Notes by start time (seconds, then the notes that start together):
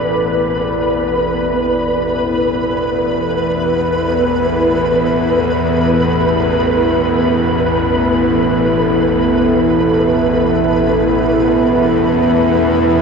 Already playing: A1 E2 B3 E4 A4 B4 D5
7.69 E5